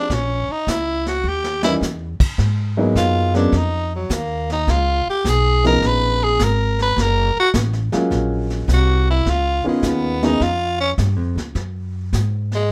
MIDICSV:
0, 0, Header, 1, 6, 480
1, 0, Start_track
1, 0, Tempo, 573066
1, 81, Time_signature, 4, 2, 24, 8
1, 10651, End_track
2, 0, Start_track
2, 0, Title_t, "Tenor saxophone"
2, 0, Program_c, 0, 66
2, 0, Note_on_c, 0, 62, 106
2, 118, Note_on_c, 0, 61, 91
2, 130, Note_off_c, 0, 62, 0
2, 431, Note_on_c, 0, 63, 99
2, 443, Note_off_c, 0, 61, 0
2, 580, Note_on_c, 0, 64, 94
2, 593, Note_off_c, 0, 63, 0
2, 898, Note_off_c, 0, 64, 0
2, 906, Note_on_c, 0, 66, 94
2, 1072, Note_on_c, 0, 67, 107
2, 1085, Note_off_c, 0, 66, 0
2, 1367, Note_off_c, 0, 67, 0
2, 1372, Note_on_c, 0, 64, 100
2, 1463, Note_off_c, 0, 64, 0
2, 2489, Note_on_c, 0, 65, 94
2, 2789, Note_off_c, 0, 65, 0
2, 2816, Note_on_c, 0, 62, 92
2, 2985, Note_on_c, 0, 63, 98
2, 2997, Note_off_c, 0, 62, 0
2, 3299, Note_off_c, 0, 63, 0
2, 3313, Note_on_c, 0, 54, 72
2, 3461, Note_on_c, 0, 58, 85
2, 3474, Note_off_c, 0, 54, 0
2, 3776, Note_off_c, 0, 58, 0
2, 3787, Note_on_c, 0, 63, 96
2, 3937, Note_on_c, 0, 65, 99
2, 3950, Note_off_c, 0, 63, 0
2, 4254, Note_off_c, 0, 65, 0
2, 4270, Note_on_c, 0, 67, 99
2, 4430, Note_on_c, 0, 68, 105
2, 4442, Note_off_c, 0, 67, 0
2, 4740, Note_off_c, 0, 68, 0
2, 4748, Note_on_c, 0, 70, 112
2, 4912, Note_on_c, 0, 71, 114
2, 4925, Note_off_c, 0, 70, 0
2, 5224, Note_on_c, 0, 68, 105
2, 5237, Note_off_c, 0, 71, 0
2, 5393, Note_on_c, 0, 70, 92
2, 5406, Note_off_c, 0, 68, 0
2, 5701, Note_off_c, 0, 70, 0
2, 5715, Note_on_c, 0, 71, 120
2, 5874, Note_on_c, 0, 70, 106
2, 5887, Note_off_c, 0, 71, 0
2, 6182, Note_off_c, 0, 70, 0
2, 6196, Note_on_c, 0, 66, 112
2, 6278, Note_off_c, 0, 66, 0
2, 7314, Note_on_c, 0, 66, 97
2, 7600, Note_off_c, 0, 66, 0
2, 7626, Note_on_c, 0, 64, 103
2, 7786, Note_on_c, 0, 65, 110
2, 7799, Note_off_c, 0, 64, 0
2, 8098, Note_off_c, 0, 65, 0
2, 8105, Note_on_c, 0, 56, 77
2, 8270, Note_on_c, 0, 59, 93
2, 8283, Note_off_c, 0, 56, 0
2, 8582, Note_on_c, 0, 63, 99
2, 8595, Note_off_c, 0, 59, 0
2, 8733, Note_on_c, 0, 65, 109
2, 8745, Note_off_c, 0, 63, 0
2, 9044, Note_off_c, 0, 65, 0
2, 9049, Note_on_c, 0, 61, 103
2, 9139, Note_off_c, 0, 61, 0
2, 10511, Note_on_c, 0, 56, 92
2, 10651, Note_off_c, 0, 56, 0
2, 10651, End_track
3, 0, Start_track
3, 0, Title_t, "Upright piano"
3, 0, Program_c, 1, 0
3, 0, Note_on_c, 1, 53, 70
3, 0, Note_on_c, 1, 56, 64
3, 0, Note_on_c, 1, 60, 66
3, 0, Note_on_c, 1, 63, 67
3, 0, Note_on_c, 1, 67, 74
3, 86, Note_off_c, 1, 53, 0
3, 90, Note_off_c, 1, 56, 0
3, 92, Note_off_c, 1, 60, 0
3, 93, Note_off_c, 1, 63, 0
3, 94, Note_off_c, 1, 67, 0
3, 1371, Note_on_c, 1, 55, 67
3, 1371, Note_on_c, 1, 58, 68
3, 1372, Note_on_c, 1, 52, 76
3, 1375, Note_on_c, 1, 61, 68
3, 1376, Note_on_c, 1, 63, 76
3, 1507, Note_off_c, 1, 52, 0
3, 1507, Note_off_c, 1, 55, 0
3, 1507, Note_off_c, 1, 58, 0
3, 1509, Note_off_c, 1, 61, 0
3, 1509, Note_off_c, 1, 63, 0
3, 2322, Note_on_c, 1, 56, 71
3, 2322, Note_on_c, 1, 58, 71
3, 2325, Note_on_c, 1, 54, 78
3, 2331, Note_on_c, 1, 63, 85
3, 2332, Note_on_c, 1, 59, 73
3, 2771, Note_off_c, 1, 56, 0
3, 2771, Note_off_c, 1, 58, 0
3, 2773, Note_off_c, 1, 54, 0
3, 2776, Note_off_c, 1, 59, 0
3, 2776, Note_off_c, 1, 63, 0
3, 2801, Note_on_c, 1, 54, 71
3, 2803, Note_on_c, 1, 56, 66
3, 2805, Note_on_c, 1, 58, 68
3, 2812, Note_on_c, 1, 59, 64
3, 2815, Note_on_c, 1, 61, 79
3, 2941, Note_off_c, 1, 54, 0
3, 2942, Note_off_c, 1, 56, 0
3, 2943, Note_off_c, 1, 58, 0
3, 2946, Note_off_c, 1, 59, 0
3, 2948, Note_off_c, 1, 61, 0
3, 4723, Note_on_c, 1, 56, 63
3, 4726, Note_on_c, 1, 53, 66
3, 4730, Note_on_c, 1, 59, 60
3, 4735, Note_on_c, 1, 61, 59
3, 4738, Note_on_c, 1, 63, 75
3, 5325, Note_off_c, 1, 56, 0
3, 5327, Note_off_c, 1, 53, 0
3, 5329, Note_off_c, 1, 59, 0
3, 5331, Note_off_c, 1, 61, 0
3, 5332, Note_off_c, 1, 63, 0
3, 6636, Note_on_c, 1, 56, 65
3, 6640, Note_on_c, 1, 54, 74
3, 6643, Note_on_c, 1, 61, 68
3, 6646, Note_on_c, 1, 65, 81
3, 6647, Note_on_c, 1, 58, 71
3, 7242, Note_off_c, 1, 56, 0
3, 7243, Note_off_c, 1, 54, 0
3, 7245, Note_off_c, 1, 61, 0
3, 7246, Note_off_c, 1, 65, 0
3, 7247, Note_off_c, 1, 58, 0
3, 8077, Note_on_c, 1, 51, 72
3, 8078, Note_on_c, 1, 56, 67
3, 8081, Note_on_c, 1, 61, 73
3, 8082, Note_on_c, 1, 59, 72
3, 8089, Note_on_c, 1, 65, 82
3, 8527, Note_off_c, 1, 51, 0
3, 8528, Note_off_c, 1, 56, 0
3, 8529, Note_off_c, 1, 61, 0
3, 8530, Note_off_c, 1, 59, 0
3, 8533, Note_off_c, 1, 65, 0
3, 8565, Note_on_c, 1, 51, 77
3, 8568, Note_on_c, 1, 59, 74
3, 8569, Note_on_c, 1, 61, 66
3, 8570, Note_on_c, 1, 56, 71
3, 8576, Note_on_c, 1, 63, 82
3, 8702, Note_off_c, 1, 51, 0
3, 8703, Note_off_c, 1, 59, 0
3, 8704, Note_off_c, 1, 56, 0
3, 8704, Note_off_c, 1, 61, 0
3, 8707, Note_off_c, 1, 63, 0
3, 10651, End_track
4, 0, Start_track
4, 0, Title_t, "Upright bass"
4, 0, Program_c, 2, 32
4, 81, Note_on_c, 2, 34, 83
4, 385, Note_off_c, 2, 34, 0
4, 562, Note_on_c, 2, 37, 84
4, 1027, Note_off_c, 2, 37, 0
4, 1036, Note_on_c, 2, 39, 81
4, 1504, Note_off_c, 2, 39, 0
4, 1517, Note_on_c, 2, 40, 87
4, 1822, Note_off_c, 2, 40, 0
4, 1996, Note_on_c, 2, 44, 84
4, 2463, Note_off_c, 2, 44, 0
4, 2475, Note_on_c, 2, 42, 93
4, 2942, Note_off_c, 2, 42, 0
4, 2950, Note_on_c, 2, 41, 83
4, 3419, Note_off_c, 2, 41, 0
4, 3431, Note_on_c, 2, 39, 100
4, 3900, Note_off_c, 2, 39, 0
4, 3914, Note_on_c, 2, 37, 87
4, 4220, Note_off_c, 2, 37, 0
4, 4393, Note_on_c, 2, 35, 93
4, 4860, Note_off_c, 2, 35, 0
4, 4872, Note_on_c, 2, 34, 84
4, 5340, Note_off_c, 2, 34, 0
4, 5356, Note_on_c, 2, 32, 94
4, 5821, Note_off_c, 2, 32, 0
4, 5834, Note_on_c, 2, 30, 87
4, 6139, Note_off_c, 2, 30, 0
4, 6315, Note_on_c, 2, 33, 95
4, 6619, Note_off_c, 2, 33, 0
4, 6790, Note_on_c, 2, 34, 82
4, 7258, Note_off_c, 2, 34, 0
4, 7269, Note_on_c, 2, 36, 97
4, 7738, Note_off_c, 2, 36, 0
4, 7757, Note_on_c, 2, 37, 86
4, 8061, Note_off_c, 2, 37, 0
4, 8229, Note_on_c, 2, 39, 95
4, 8698, Note_off_c, 2, 39, 0
4, 8715, Note_on_c, 2, 41, 79
4, 9182, Note_off_c, 2, 41, 0
4, 9196, Note_on_c, 2, 43, 95
4, 9348, Note_off_c, 2, 43, 0
4, 9348, Note_on_c, 2, 41, 63
4, 9505, Note_off_c, 2, 41, 0
4, 9510, Note_on_c, 2, 37, 68
4, 9662, Note_off_c, 2, 37, 0
4, 9673, Note_on_c, 2, 42, 81
4, 10142, Note_off_c, 2, 42, 0
4, 10157, Note_on_c, 2, 44, 86
4, 10624, Note_off_c, 2, 44, 0
4, 10651, End_track
5, 0, Start_track
5, 0, Title_t, "Muted upright bass strokes"
5, 403, Note_on_c, 9, 29, 41
5, 487, Note_off_c, 9, 29, 0
5, 1842, Note_on_c, 9, 29, 41
5, 1926, Note_off_c, 9, 29, 0
5, 4245, Note_on_c, 9, 29, 42
5, 4328, Note_off_c, 9, 29, 0
5, 6164, Note_on_c, 9, 29, 43
5, 6248, Note_off_c, 9, 29, 0
5, 6648, Note_on_c, 9, 29, 45
5, 6732, Note_off_c, 9, 29, 0
5, 8090, Note_on_c, 9, 29, 41
5, 8174, Note_off_c, 9, 29, 0
5, 10651, End_track
6, 0, Start_track
6, 0, Title_t, "Drums"
6, 83, Note_on_c, 9, 36, 27
6, 84, Note_on_c, 9, 25, 45
6, 84, Note_on_c, 9, 38, 48
6, 167, Note_off_c, 9, 36, 0
6, 168, Note_off_c, 9, 38, 0
6, 562, Note_on_c, 9, 36, 23
6, 568, Note_on_c, 9, 38, 70
6, 570, Note_on_c, 9, 44, 64
6, 646, Note_off_c, 9, 36, 0
6, 652, Note_off_c, 9, 38, 0
6, 653, Note_off_c, 9, 44, 0
6, 890, Note_on_c, 9, 38, 43
6, 974, Note_off_c, 9, 38, 0
6, 1207, Note_on_c, 9, 38, 60
6, 1291, Note_off_c, 9, 38, 0
6, 1363, Note_on_c, 9, 38, 86
6, 1447, Note_off_c, 9, 38, 0
6, 1527, Note_on_c, 9, 38, 55
6, 1529, Note_on_c, 9, 44, 56
6, 1611, Note_off_c, 9, 38, 0
6, 1613, Note_off_c, 9, 44, 0
6, 1844, Note_on_c, 9, 36, 73
6, 1845, Note_on_c, 9, 49, 75
6, 1927, Note_off_c, 9, 36, 0
6, 1929, Note_off_c, 9, 49, 0
6, 1996, Note_on_c, 9, 36, 23
6, 1998, Note_off_c, 9, 25, 0
6, 1998, Note_on_c, 9, 25, 58
6, 1998, Note_on_c, 9, 38, 49
6, 2079, Note_off_c, 9, 36, 0
6, 2081, Note_off_c, 9, 38, 0
6, 2476, Note_on_c, 9, 36, 27
6, 2479, Note_on_c, 9, 38, 66
6, 2480, Note_on_c, 9, 44, 58
6, 2559, Note_off_c, 9, 36, 0
6, 2563, Note_off_c, 9, 38, 0
6, 2564, Note_off_c, 9, 44, 0
6, 2801, Note_on_c, 9, 38, 43
6, 2885, Note_off_c, 9, 38, 0
6, 2952, Note_off_c, 9, 25, 0
6, 2952, Note_on_c, 9, 25, 49
6, 2952, Note_on_c, 9, 38, 45
6, 2953, Note_on_c, 9, 36, 22
6, 3035, Note_off_c, 9, 38, 0
6, 3037, Note_off_c, 9, 36, 0
6, 3435, Note_on_c, 9, 36, 20
6, 3436, Note_on_c, 9, 38, 65
6, 3437, Note_on_c, 9, 44, 65
6, 3519, Note_off_c, 9, 36, 0
6, 3519, Note_off_c, 9, 38, 0
6, 3521, Note_off_c, 9, 44, 0
6, 3766, Note_on_c, 9, 38, 41
6, 3850, Note_off_c, 9, 38, 0
6, 3916, Note_on_c, 9, 36, 27
6, 3918, Note_off_c, 9, 25, 0
6, 3918, Note_on_c, 9, 25, 50
6, 3918, Note_on_c, 9, 38, 48
6, 4000, Note_off_c, 9, 36, 0
6, 4002, Note_off_c, 9, 38, 0
6, 4397, Note_on_c, 9, 36, 20
6, 4399, Note_on_c, 9, 38, 68
6, 4401, Note_on_c, 9, 44, 66
6, 4481, Note_off_c, 9, 36, 0
6, 4483, Note_off_c, 9, 38, 0
6, 4485, Note_off_c, 9, 44, 0
6, 4729, Note_on_c, 9, 38, 43
6, 4813, Note_off_c, 9, 38, 0
6, 4878, Note_on_c, 9, 36, 24
6, 4881, Note_off_c, 9, 25, 0
6, 4881, Note_on_c, 9, 25, 52
6, 4881, Note_on_c, 9, 38, 46
6, 4962, Note_off_c, 9, 36, 0
6, 4965, Note_off_c, 9, 38, 0
6, 5355, Note_on_c, 9, 38, 60
6, 5356, Note_on_c, 9, 36, 23
6, 5357, Note_on_c, 9, 44, 64
6, 5439, Note_off_c, 9, 38, 0
6, 5440, Note_off_c, 9, 36, 0
6, 5441, Note_off_c, 9, 44, 0
6, 5688, Note_on_c, 9, 38, 40
6, 5772, Note_off_c, 9, 38, 0
6, 5836, Note_on_c, 9, 36, 20
6, 5842, Note_off_c, 9, 25, 0
6, 5842, Note_on_c, 9, 25, 50
6, 5842, Note_on_c, 9, 38, 49
6, 5920, Note_off_c, 9, 36, 0
6, 5925, Note_off_c, 9, 38, 0
6, 6314, Note_on_c, 9, 38, 67
6, 6315, Note_on_c, 9, 36, 25
6, 6315, Note_on_c, 9, 44, 68
6, 6397, Note_off_c, 9, 38, 0
6, 6399, Note_off_c, 9, 36, 0
6, 6399, Note_off_c, 9, 44, 0
6, 6476, Note_on_c, 9, 38, 29
6, 6560, Note_off_c, 9, 38, 0
6, 6636, Note_on_c, 9, 38, 46
6, 6641, Note_off_c, 9, 38, 0
6, 6641, Note_on_c, 9, 38, 41
6, 6725, Note_off_c, 9, 38, 0
6, 6795, Note_on_c, 9, 36, 28
6, 6798, Note_off_c, 9, 25, 0
6, 6798, Note_on_c, 9, 25, 47
6, 6798, Note_on_c, 9, 38, 45
6, 6879, Note_off_c, 9, 36, 0
6, 6882, Note_off_c, 9, 38, 0
6, 7121, Note_on_c, 9, 38, 41
6, 7205, Note_off_c, 9, 38, 0
6, 7273, Note_on_c, 9, 36, 21
6, 7276, Note_on_c, 9, 38, 60
6, 7277, Note_on_c, 9, 44, 55
6, 7357, Note_off_c, 9, 36, 0
6, 7360, Note_off_c, 9, 38, 0
6, 7361, Note_off_c, 9, 44, 0
6, 7755, Note_on_c, 9, 36, 25
6, 7757, Note_off_c, 9, 25, 0
6, 7757, Note_on_c, 9, 25, 51
6, 7757, Note_on_c, 9, 38, 49
6, 7839, Note_off_c, 9, 36, 0
6, 7841, Note_off_c, 9, 38, 0
6, 8232, Note_on_c, 9, 38, 67
6, 8234, Note_on_c, 9, 36, 25
6, 8234, Note_on_c, 9, 44, 69
6, 8316, Note_off_c, 9, 38, 0
6, 8317, Note_off_c, 9, 44, 0
6, 8318, Note_off_c, 9, 36, 0
6, 8564, Note_on_c, 9, 38, 42
6, 8648, Note_off_c, 9, 38, 0
6, 8716, Note_on_c, 9, 36, 22
6, 8720, Note_off_c, 9, 25, 0
6, 8720, Note_on_c, 9, 25, 50
6, 8720, Note_on_c, 9, 38, 46
6, 8800, Note_off_c, 9, 36, 0
6, 8804, Note_off_c, 9, 38, 0
6, 9196, Note_on_c, 9, 36, 20
6, 9198, Note_on_c, 9, 38, 63
6, 9200, Note_on_c, 9, 44, 52
6, 9280, Note_off_c, 9, 36, 0
6, 9282, Note_off_c, 9, 38, 0
6, 9283, Note_off_c, 9, 44, 0
6, 9528, Note_on_c, 9, 38, 43
6, 9612, Note_off_c, 9, 38, 0
6, 9676, Note_on_c, 9, 36, 26
6, 9677, Note_off_c, 9, 25, 0
6, 9677, Note_on_c, 9, 25, 43
6, 9677, Note_on_c, 9, 38, 45
6, 9760, Note_off_c, 9, 36, 0
6, 9761, Note_off_c, 9, 38, 0
6, 10158, Note_on_c, 9, 36, 19
6, 10159, Note_on_c, 9, 38, 60
6, 10161, Note_on_c, 9, 44, 51
6, 10242, Note_off_c, 9, 36, 0
6, 10243, Note_off_c, 9, 38, 0
6, 10244, Note_off_c, 9, 44, 0
6, 10483, Note_on_c, 9, 38, 35
6, 10567, Note_off_c, 9, 38, 0
6, 10651, Note_off_c, 9, 25, 0
6, 10651, End_track
0, 0, End_of_file